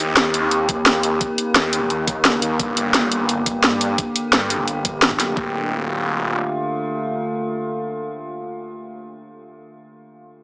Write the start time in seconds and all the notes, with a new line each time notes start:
Already playing: D#2 D#3 A#3 G4
0.17 snare, closed hi-hat
0.34 D#2, closed hi-hat
0.51 closed hi-hat
0.69 kick, closed hi-hat
0.86 D#2, snare, closed hi-hat
1.03 closed hi-hat
1.21 kick, closed hi-hat
1.38 closed hi-hat
1.55 D#2, snare, closed hi-hat
1.73 closed hi-hat
1.90 D#2, closed hi-hat
2.07 kick, closed hi-hat
2.25 snare, closed hi-hat
2.42 D#2, closed hi-hat
2.59 G1 D3 G4, kick, closed hi-hat
2.77 closed hi-hat
2.94 snare, closed hi-hat
3.11 G1, closed hi-hat
3.29 closed hi-hat
3.46 kick, closed hi-hat
3.63 G2, snare, closed hi-hat
3.81 closed hi-hat
3.98 kick, closed hi-hat
4.16 closed hi-hat
4.33 G2, snare, closed hi-hat
4.50 closed hi-hat
4.68 G1, closed hi-hat
4.85 kick, closed hi-hat
5.02 snare, closed hi-hat
5.11 kick
5.16 F#1
5.20 snare, closed hi-hat
5.37 D1 D3 A3 F4, kick